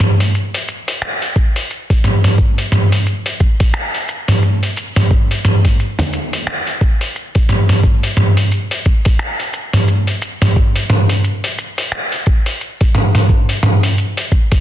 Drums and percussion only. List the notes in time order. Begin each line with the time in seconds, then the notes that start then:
0.00 mid tom, shaker
0.20 open hi-hat, shaker
0.35 shaker
0.54 open hi-hat, shaker
0.68 shaker
0.88 open hi-hat, shaker
1.02 finger snap, shaker
1.22 open hi-hat, shaker
1.36 kick, shaker
1.56 open hi-hat, shaker
1.70 shaker
1.90 kick, open hi-hat, shaker
2.04 mid tom, shaker
2.24 mid tom, open hi-hat, shaker
2.38 kick, shaker
2.58 open hi-hat, shaker
2.72 mid tom, shaker
2.92 open hi-hat, shaker
3.06 shaker
3.26 open hi-hat, shaker
3.40 kick, shaker
3.60 kick, open hi-hat, shaker
3.74 finger snap, shaker
3.94 open hi-hat, shaker
4.08 shaker
4.28 mid tom, open hi-hat, shaker
4.43 shaker
4.63 open hi-hat, shaker
4.77 shaker
4.96 mid tom, open hi-hat, shaker
5.11 kick, shaker
5.31 open hi-hat, shaker
5.45 mid tom, shaker
5.65 kick, open hi-hat, shaker
5.79 shaker
5.99 open hi-hat, frame drum, shaker
6.13 shaker
6.33 open hi-hat, shaker
6.47 finger snap, shaker
6.67 open hi-hat, shaker
6.81 kick, shaker
7.01 open hi-hat, shaker
7.16 shaker
7.35 kick, open hi-hat, shaker
7.49 mid tom, shaker
7.69 mid tom, open hi-hat, shaker
7.84 kick, shaker
8.03 open hi-hat, shaker
8.17 mid tom, shaker
8.37 open hi-hat, shaker
8.52 shaker
8.71 open hi-hat, shaker
8.85 kick, shaker
9.05 kick, open hi-hat, shaker
9.19 finger snap, shaker
9.39 open hi-hat, shaker
9.53 shaker
9.73 mid tom, open hi-hat, shaker
9.88 shaker
10.07 open hi-hat, shaker
10.22 shaker
10.42 mid tom, open hi-hat, shaker
10.56 kick, shaker
10.76 open hi-hat, shaker
10.90 mid tom, shaker
11.09 open hi-hat, shaker
11.24 shaker
11.44 open hi-hat, shaker
11.58 shaker
11.78 open hi-hat, shaker
11.92 finger snap, shaker
12.12 open hi-hat, shaker
12.26 kick, shaker
12.46 open hi-hat, shaker
12.61 shaker
12.81 kick, open hi-hat, shaker
12.95 mid tom, shaker
13.15 mid tom, open hi-hat, shaker
13.29 kick, shaker
13.49 open hi-hat, shaker
13.63 mid tom, shaker
13.83 open hi-hat, shaker
13.98 shaker
14.17 open hi-hat, shaker
14.32 kick, shaker
14.52 kick, open hi-hat, shaker